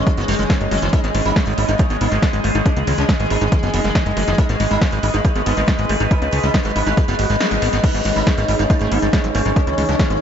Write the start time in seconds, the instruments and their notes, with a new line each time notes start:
Already playing: synth drone G#3 C#4, analog synth pad D#5
0.07 sitar D#3, acid bass F#3, kick, closed hi-hat
0.17 analog synth bass F#1, sitar D#3, acid bass B3, closed hi-hat
0.28 analog synth bass F#1, sitar G#3, acid bass G#3, open hi-hat, ride
0.39 analog synth bass F#1, sitar D#3, acid bass G#3, closed hi-hat
0.50 sitar D#3, acid bass G#3, kick, snare, closed hi-hat
0.61 analog synth bass F#1, acid bass G#3, closed hi-hat
0.71 analog synth bass F#1, sitar D#3, acid bass G#3, open hi-hat, ride
0.82 analog synth bass F#1, sitar D#3, acid bass G#3, closed hi-hat
0.93 acid bass G#3, sitar D#4, synth drone G#4, kick, closed hi-hat
1.04 analog synth bass G#1, sitar G#3, acid bass B3, closed hi-hat
1.15 analog synth bass G#1, sitar G#3, acid bass G#3, open hi-hat, ride
1.25 analog synth bass G#1, acid bass G#3, sitar D#4, closed hi-hat
1.36 sitar G#3, acid bass G#3, kick, snare, closed hi-hat
1.47 analog synth bass G#1, sitar G#3, acid bass G#3, closed hi-hat
1.58 analog synth bass G#1, acid bass A3, sitar D#4, open hi-hat, ride
1.69 analog synth bass G#1, sitar G#3, acid bass D#4, closed hi-hat
1.79 acid bass F#3, sitar G#3, kick, closed hi-hat
1.90 analog synth bass G#1, sitar G#3, acid bass B3, closed hi-hat
2.01 analog synth bass G#1, acid bass B3, sitar D#4, open hi-hat, ride
2.12 analog synth bass G#1, sitar G#3, acid bass G#3, closed hi-hat
2.23 sitar G#3, acid bass G#3, kick, snare, closed hi-hat
2.33 analog synth bass G#1, acid bass G#3, closed hi-hat
2.44 analog synth bass G#1, sitar G#3, acid bass A3, open hi-hat, ride
2.55 analog synth bass G#1, sitar G#3, acid bass D#4, closed hi-hat
2.66 acid bass G#3, sitar C#4, kick, closed hi-hat
2.76 analog synth bass C#2, sitar D#3, acid bass B3, closed hi-hat
2.87 analog synth bass C#2, sitar D#3, acid bass G#3, open hi-hat, ride
2.98 analog synth bass C#2, acid bass G#3, sitar C#4, snare, closed hi-hat
3.09 sitar D#3, acid bass G#3, kick, snare, closed hi-hat
3.20 analog synth bass G#1, sitar D#3, acid bass G#3, closed hi-hat
3.30 analog synth bass G#1, acid bass A3, sitar D#4, open hi-hat, ride
3.41 analog synth bass G#1, sitar D#3, acid bass D#4, closed hi-hat
3.52 sitar D#3, acid bass F#3, kick, closed hi-hat
3.63 analog synth bass F#1, sitar D#3, acid bass B3, closed hi-hat
3.74 analog synth bass F#1, acid bass B3, sitar D#4, open hi-hat, ride
3.84 analog synth bass F#1, sitar D#3, acid bass G#3, closed hi-hat
3.95 sitar D#3, acid bass G#3, kick, snare, closed hi-hat
4.06 analog synth bass F#1, acid bass G#3, closed hi-hat
4.17 analog synth bass F#1, sitar D#3, acid bass A3, open hi-hat, ride
4.28 analog synth bass F#1, sitar D#3, acid bass D#4, closed hi-hat
4.38 acid bass G#3, sitar D#4, synth drone B4, kick, closed hi-hat
4.49 analog synth bass G#1, sitar G#3, acid bass B3, closed hi-hat
4.60 analog synth bass G#1, sitar G#3, acid bass G#3, open hi-hat, ride
4.71 analog synth bass G#1, acid bass G#3, sitar D#4, closed hi-hat
4.81 sitar G#3, acid bass G#3, kick, snare, closed hi-hat
4.92 analog synth bass G#1, sitar G#3, acid bass G#3, closed hi-hat
5.03 analog synth bass G#1, acid bass A3, sitar D#4, open hi-hat, ride
5.14 analog synth bass G#1, sitar G#3, acid bass D#4, closed hi-hat
5.25 acid bass F#3, sitar G#3, kick, closed hi-hat
5.35 analog synth bass G#1, sitar G#3, acid bass B3, closed hi-hat
5.46 analog synth bass G#1, acid bass B3, sitar D#4, open hi-hat, ride
5.57 analog synth bass G#1, acid bass G#3, sitar G#3, closed hi-hat
5.68 acid bass G#3, sitar G#3, kick, snare, closed hi-hat
5.79 analog synth bass G#1, acid bass G#3, closed hi-hat
5.89 analog synth bass G#1, sitar G#3, acid bass A3, open hi-hat, ride
6.00 analog synth bass G#1, sitar G#3, acid bass D#4, closed hi-hat
6.11 acid bass G#3, sitar D#4, kick, closed hi-hat
6.22 analog synth bass C#2, sitar G#3, acid bass B3, closed hi-hat
6.33 analog synth bass C#2, acid bass G#3, sitar G#3, open hi-hat, ride
6.43 analog synth bass C#2, acid bass G#3, sitar D#4, snare, closed hi-hat
6.54 acid bass G#3, sitar G#3, kick, snare, closed hi-hat
6.65 analog synth bass G#1, acid bass G#3, sitar G#3, closed hi-hat
6.76 analog synth bass G#1, acid bass A3, sitar D#4, open hi-hat, ride
6.87 analog synth bass G#1, sitar G#3, acid bass D#4, closed hi-hat
6.97 acid bass F#3, sitar G#3, kick, closed hi-hat
7.08 analog synth bass F#1, sitar G#3, acid bass B3, closed hi-hat
7.19 analog synth bass G#1, acid bass A3, sitar F#4, open hi-hat, ride
7.30 analog synth bass G#1, acid bass G#3, sitar G#3, closed hi-hat
7.40 sitar G#3, acid bass G#3, snare, closed hi-hat
7.51 analog synth bass G#1, acid bass G#3, closed hi-hat
7.62 analog synth bass G#1, sitar G#3, acid bass B3, open hi-hat, ride
7.73 analog synth bass G#1, sitar G#3, acid bass B3, closed hi-hat
7.84 acid bass G#3, synth drone C#4 C#5, sitar D#4, analog synth pad D#4, kick, closed hi-hat, crash
7.93 analog synth bass G#1, sitar G#3, acid bass A3, analog synth pad G#4, closed hi-hat
8.05 analog synth bass G#1, sitar G#3, acid bass G#3, open hi-hat, ride
8.16 analog synth bass G#1, acid bass G#3, sitar D#4, closed hi-hat
8.27 sitar G#3, acid bass A3, kick, snare, closed hi-hat
8.38 analog synth bass G#1, sitar G#3, acid bass B3, closed hi-hat
8.48 analog synth bass G#1, acid bass A3, sitar D#4, open hi-hat, ride
8.59 analog synth bass G#1, sitar G#3, acid bass D#4, closed hi-hat
8.70 sitar G#3, acid bass G#3, kick, closed hi-hat
8.81 analog synth bass G#1, sitar G#3, acid bass A3, closed hi-hat
8.92 analog synth bass G#1, acid bass B3, sitar D#4, open hi-hat, ride
9.02 analog synth bass G#1, sitar G#3, acid bass G#3, closed hi-hat
9.13 sitar G#3, acid bass A3, kick, snare, closed hi-hat
9.24 analog synth bass G#1, acid bass F#3, closed hi-hat
9.35 analog synth bass G#1, sitar G#3, acid bass A3, open hi-hat, ride
9.46 analog synth bass G#1, acid bass F#3, sitar G#3, closed hi-hat
9.56 acid bass G#3, sitar C#4, kick, closed hi-hat
9.67 analog synth bass C#2, sitar D#3, acid bass A3, closed hi-hat
9.78 analog synth bass C#2, sitar D#3, acid bass G#3, open hi-hat, ride
9.89 analog synth bass C#2, acid bass G#3, sitar C#4, snare, closed hi-hat
9.99 sitar D#3, acid bass A3, kick, snare, closed hi-hat
10.10 analog synth bass G#1, sitar D#3, acid bass B3, closed hi-hat